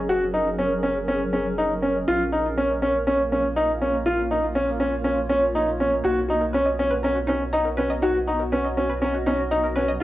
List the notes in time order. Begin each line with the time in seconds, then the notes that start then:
Already playing: F#1 F#3 C#4 G#4 A#4
0.09 F#4
0.34 D#4
0.59 C#4
0.83 C#4
1.08 C#4
1.33 C#4
1.58 D#4
1.82 C#4
2.07 A#1 A#3 F4
2.32 D#4
2.58 C#4
2.70 F4
2.82 C#4
3.07 C#4
3.32 C#4
3.56 D#4
3.65 C#5
3.82 C#4
4.06 F4
4.31 D#4
4.55 C#4
4.80 C#4
5.04 C#4
5.29 C#4
5.55 D#4
5.80 C#4
6.04 B1 B3 D#4 F#4
6.12 F#4
6.29 D#4 F#4
6.41 A#4
6.53 C#4 B4
6.66 D#5
6.79 C#4
6.91 B4
6.96 D#5
7.03 C#4 A#4
7.15 F#4
7.27 C#4 D#4
7.53 D#4 A#5
7.65 A#4
7.77 C#4 B4
7.90 D#5
8.02 D#4 F#4
8.27 D#4 F#4
8.40 A#4
8.52 C#4 B4
8.65 D#5
8.77 C#4
8.89 B4
9.02 C#4 A#4
9.14 F#4
9.26 C#4 D#4
9.51 D#4 A#5
9.64 A#4
9.76 C#4 B4
9.88 D#5